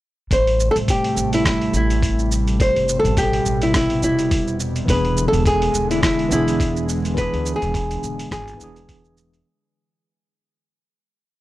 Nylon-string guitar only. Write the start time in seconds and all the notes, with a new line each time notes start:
0.33 C5
0.71 A4
0.90 G4
1.34 E4
1.47 E4
1.76 E4
2.61 C5
2.99 A4
3.18 G4
3.63 E4
3.76 E4
4.04 E4
4.90 B4
5.28 A4
5.47 G#4
5.91 E4
6.04 E4
6.32 E4
7.18 B4
7.56 G#4
8.32 G#4